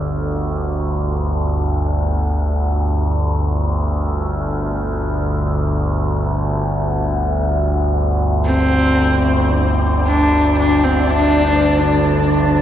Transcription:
0.00 12.62 G1 medium
0.00 12.62 D2 medium
8.46 9.47 C4 medium
8.46 12.62 D4 medium
8.46 12.62 D5 medium
10.07 10.55 D4 medium
10.59 10.86 D4 medium
10.84 11.12 C4 medium
11.10 12.15 D4 loud

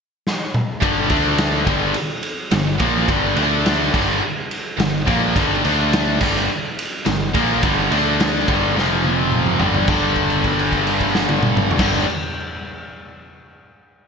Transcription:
0.27 snare medium
0.54 mid tom medium
0.82 1.08 G1 medium
0.82 1.09 G2 medium
0.82 1.08 D3 loud
0.82 1.10 G3 loud
0.82 kick loud
0.82 ride loud
1.09 1.63 D2 medium
1.09 1.65 D3 medium
1.09 1.66 A3 loud
1.09 1.66 D4 loud
1.09 kick loud
1.09 ride medium
1.38 snare loud
1.38 ride loud
1.66 1.93 G1 loud
1.66 1.94 G2 loud
1.66 1.94 D3 loud
1.66 1.94 G3 loud
1.66 kick loud
1.66 ride medium
1.94 ride loud
2.23 ride medium
2.51 2.78 G1 medium
2.51 2.75 G2 medium
2.51 2.75 D3 medium
2.51 snare loud
2.51 ride loud
2.79 3.07 A#1 medium
2.79 3.08 A#2 medium
2.79 3.08 F3 medium
2.79 3.08 A#3 medium
2.79 kick loud
2.79 ride medium
3.08 3.35 G1 medium
3.08 3.36 G2 medium
3.08 3.35 D3 loud
3.08 3.36 G3 loud
3.08 kick loud
3.08 ride loud
3.36 3.90 D2 loud
3.36 3.93 D3 medium
3.36 3.93 A3 medium
3.36 3.93 D4 loud
3.36 ride medium
3.66 snare loud
3.66 ride loud
3.94 4.20 G1 medium
3.94 4.21 G2 loud
3.94 4.21 D3 medium
3.94 4.22 G3 loud
3.94 kick loud
3.94 crash medium
4.51 ride medium
4.78 5.05 G1 medium
4.78 5.02 G2 medium
4.78 5.02 D3 medium
4.78 snare loud
4.78 ride medium
5.06 5.34 A#1 medium
5.06 5.34 A#2 medium
5.06 5.35 F3 medium
5.06 5.35 A#3 medium
5.06 kick loud
5.06 ride medium
5.35 5.62 G1 medium
5.35 5.63 G2 medium
5.35 5.63 D3 loud
5.35 5.63 G3 loud
5.35 kick loud
5.35 ride medium
5.64 6.17 D2 loud
5.64 6.20 D3 medium
5.64 6.20 A3 loud
5.64 6.21 D4 loud
5.64 ride medium
5.93 snare loud
5.93 ride loud
6.21 6.48 G1 medium
6.21 6.48 G2 medium
6.21 6.49 D3 loud
6.21 6.49 G3 loud
6.21 kick loud
6.21 crash loud
6.79 ride medium
7.06 7.33 G1 medium
7.06 7.28 G2 medium
7.06 7.29 D3 medium
7.06 snare loud
7.06 ride medium
7.34 7.61 A#1 medium
7.34 7.61 A#2 medium
7.34 7.62 F3 medium
7.34 7.62 A#3 medium
7.34 kick loud
7.34 ride medium
7.63 7.89 G1 medium
7.63 7.90 G2 loud
7.63 7.89 D3 loud
7.63 7.90 G3 loud
7.63 kick loud
7.63 ride loud
7.91 8.43 D2 medium
7.91 8.46 D3 medium
7.91 8.46 A3 medium
7.91 8.47 D4 medium
7.91 ride medium
8.20 snare loud
8.20 ride loud
8.47 8.74 G1 medium
8.47 8.75 G2 loud
8.47 8.75 D3 loud
8.47 8.75 G3 loud
8.47 kick loud
8.47 ride medium
8.75 9.56 F1 medium
8.75 9.59 F2 medium
8.75 9.60 C3 medium
8.75 9.60 F3 medium
8.75 snare medium
9.04 high tom medium
9.32 mid tom medium
9.46 mid tom medium
9.60 9.86 G1 medium
9.60 9.85 G2 medium
9.60 9.87 D3 medium
9.60 9.88 G3 medium
9.60 floor tom loud
9.74 floor tom medium
9.86 11.68 G1 medium
9.86 11.77 G2 loud
9.86 11.79 D3 medium
9.86 kick loud
9.86 crash medium
9.90 11.81 G3 loud
10.16 kick medium
10.16 crash soft
10.30 crash soft
10.44 kick medium
10.44 crash soft
10.59 crash soft
10.72 kick medium
10.72 crash medium
10.87 crash medium
11.01 kick medium
11.01 crash medium
11.15 snare medium
11.29 high tom loud
11.43 mid tom loud
11.57 mid tom loud
11.71 floor tom loud
11.77 12.03 G1 medium
11.77 12.04 G2 medium
11.77 12.05 D3 medium
11.77 kick loud
11.77 snare loud
11.77 crash loud
11.81 12.06 G3 loud

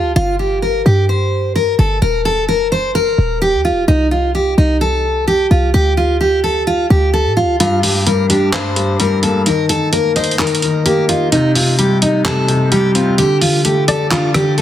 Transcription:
0.00 0.15 D2 loud
0.00 0.11 F4 medium
0.16 0.83 G1 loud
0.16 0.35 F4 loud
0.39 0.58 G4 medium
0.62 0.81 A#4 medium
0.86 1.75 G2 loud
0.86 1.04 G4 medium
1.09 1.53 C5 medium
1.55 1.74 A#4 medium
1.79 2.01 G1 loud
1.79 1.97 A4 medium
2.02 2.86 D#1 loud
2.02 2.21 A#4 medium
2.25 2.44 A4 loud
2.48 2.67 A#4 medium
2.72 2.90 C5 medium
2.84 3.03 G1 medium
2.95 3.39 A#4 medium
3.01 3.17 D#1 loud
3.18 3.55 D#1 loud
3.42 3.60 G4 medium
3.54 3.72 D#2 loud
3.65 3.83 F4 medium
3.71 3.87 D#1 loud
3.88 4.55 C2 loud
3.88 4.07 D#4 loud
4.11 4.30 F4 medium
4.35 4.53 G4 medium
4.58 5.47 C2 loud
4.58 4.76 D#4 medium
4.81 5.25 A4 medium
5.28 5.46 G4 medium
5.51 5.73 C2 loud
5.51 5.69 F4 medium
5.74 6.86 D2 loud
5.74 5.92 G4 loud
5.97 6.16 F4 medium
6.21 6.39 G4 medium
6.44 6.62 A4 medium
6.67 6.86 F4 loud
6.90 7.27 D2 loud
6.90 7.09 G4 medium
7.14 7.32 A4 medium
7.26 7.44 A2 loud
7.37 7.55 F4 medium
7.43 7.59 D2 loud
7.60 7.82 G2 medium
7.60 7.79 F4 loud
7.60 closed hi-hat medium
7.83 8.51 G2 medium
7.83 8.02 G4 medium
7.83 open hi-hat medium
8.07 8.98 G3 medium
8.07 8.25 A#4 medium
8.07 closed hi-hat medium
8.30 9.46 D4 loud
8.30 8.49 G4 medium
8.30 closed hi-hat medium
8.53 8.75 G2 medium
8.53 8.97 C5 medium
8.53 clap loud
8.53 closed hi-hat medium
8.76 9.46 G2 medium
8.76 closed hi-hat medium
9.00 9.46 G3 medium
9.00 9.18 A#4 medium
9.00 closed hi-hat medium
9.23 9.46 A#3 medium
9.23 9.42 A4 medium
9.23 closed hi-hat medium
9.46 9.68 D#3 medium
9.46 9.65 A#4 medium
9.46 closed hi-hat medium
9.69 10.38 D#3 medium
9.69 9.88 A4 medium
9.69 closed hi-hat medium
9.93 10.84 A#3 medium
9.93 10.11 A#4 medium
9.93 closed hi-hat medium
10.16 10.34 C5 medium
10.16 11.32 D#5 loud
10.16 closed hi-hat soft
10.24 closed hi-hat medium
10.31 closed hi-hat medium
10.39 10.61 D#3 medium
10.39 10.83 A#4 medium
10.39 clap loud
10.39 closed hi-hat medium
10.47 closed hi-hat medium
10.55 closed hi-hat medium
10.62 11.32 D#3 medium
10.62 closed hi-hat medium
10.86 11.32 A#3 loud
10.86 11.04 G4 medium
10.86 closed hi-hat medium
11.09 11.32 D#4 medium
11.09 11.27 F4 medium
11.09 closed hi-hat medium
11.32 11.54 C3 medium
11.32 11.51 D#4 loud
11.32 closed hi-hat medium
11.55 12.24 C3 medium
11.55 11.74 F4 medium
11.55 open hi-hat medium
11.79 12.70 G3 medium
11.79 11.97 G4 medium
11.79 closed hi-hat medium
12.02 13.18 D#4 loud
12.02 12.21 D#4 medium
12.02 closed hi-hat medium
12.25 12.47 C3 medium
12.25 12.69 A4 medium
12.25 clap loud
12.25 closed hi-hat medium
12.48 13.18 C3 medium
12.48 closed hi-hat medium
12.72 13.18 G3 medium
12.72 12.90 G4 medium
12.72 closed hi-hat medium
12.95 13.18 C4 medium
12.95 13.14 F4 medium
12.95 closed hi-hat medium
13.18 13.40 D3 medium
13.18 13.37 G4 loud
13.18 closed hi-hat medium
13.41 14.10 D3 medium
13.41 13.60 F4 medium
13.41 open hi-hat medium
13.65 14.56 A3 medium
13.65 13.83 G4 medium
13.65 closed hi-hat medium
13.88 14.07 A4 medium
13.88 14.62 D5 loud
13.88 closed hi-hat medium
14.11 14.33 D3 medium
14.11 14.30 F4 loud
14.11 clap loud
14.11 closed hi-hat medium
14.34 14.62 D3 medium
14.34 14.53 G4 medium
14.34 cross-stick loud
14.34 closed hi-hat medium
14.58 14.62 A3 medium
14.58 14.62 A4 medium
14.58 closed hi-hat soft

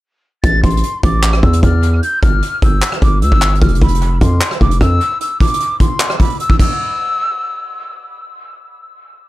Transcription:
0.44 0.63 A1 loud
0.44 0.61 A6 medium
0.44 kick loud
0.44 closed hi-hat medium
0.63 0.83 A1 loud
0.63 1.01 C6 medium
0.63 kick loud
0.63 closed hi-hat medium
0.70 closed hi-hat medium
0.77 closed hi-hat medium
0.83 closed hi-hat medium
1.03 1.41 A1 loud
1.03 1.41 D6 medium
1.03 kick loud
1.03 closed hi-hat loud
1.23 clap loud
1.23 closed hi-hat medium
1.33 cross-stick medium
1.43 1.62 E2 loud
1.43 1.60 E6 medium
1.43 kick medium
1.43 closed hi-hat soft
1.53 closed hi-hat medium
1.63 2.01 E2 loud
1.63 2.00 F6 medium
1.63 kick loud
1.63 closed hi-hat medium
1.83 closed hi-hat medium
2.02 2.20 G6 loud
2.02 closed hi-hat medium
2.22 2.42 G1 loud
2.22 2.60 F6 medium
2.22 kick loud
2.22 closed hi-hat medium
2.42 closed hi-hat medium
2.62 2.81 G1 loud
2.62 3.00 E6 medium
2.62 kick loud
2.62 closed hi-hat medium
2.82 clap loud
2.82 closed hi-hat medium
2.92 cross-stick medium
3.02 3.23 G1 loud
3.02 3.19 D6 medium
3.02 kick medium
3.02 closed hi-hat medium
3.22 3.31 D2 loud
3.22 3.59 E6 loud
3.22 closed hi-hat medium
3.32 3.60 G1 loud
3.32 kick medium
3.42 clap medium
3.42 closed hi-hat soft
3.48 closed hi-hat medium
3.55 closed hi-hat medium
3.61 3.81 F1 loud
3.61 3.79 F6 medium
3.61 kick loud
3.61 closed hi-hat medium
3.68 closed hi-hat medium
3.75 closed hi-hat medium
3.81 4.20 F1 loud
3.81 4.19 B5 medium
3.81 kick loud
3.81 closed hi-hat medium
3.88 closed hi-hat medium
3.95 closed hi-hat medium
4.01 closed hi-hat medium
4.21 4.40 F2 loud
4.21 4.59 C6 medium
4.21 kick loud
4.21 closed hi-hat medium
4.41 clap loud
4.41 closed hi-hat medium
4.51 cross-stick loud
4.61 4.80 F1 loud
4.61 4.78 D6 medium
4.61 kick medium
4.61 closed hi-hat soft
4.71 closed hi-hat medium
4.81 5.00 F2 loud
4.81 5.18 E6 medium
4.81 kick medium
4.81 cross-stick medium
4.81 closed hi-hat medium
5.01 closed hi-hat medium
5.21 5.38 E6 medium
5.21 closed hi-hat medium
5.40 5.78 D6 medium
5.40 kick loud
5.40 closed hi-hat soft
5.40 open hi-hat medium
5.47 closed hi-hat medium
5.54 closed hi-hat medium
5.60 closed hi-hat medium
5.80 6.17 C6 medium
5.80 kick loud
5.80 closed hi-hat medium
6.00 clap loud
6.00 closed hi-hat medium
6.10 cross-stick medium
6.20 6.37 B5 medium
6.20 kick medium
6.20 closed hi-hat medium
6.25 closed hi-hat medium
6.30 closed hi-hat medium
6.35 closed hi-hat soft
6.40 6.58 E6 medium
6.40 closed hi-hat medium
6.50 kick medium
6.59 7.95 E6 medium
6.59 kick loud
6.59 crash medium

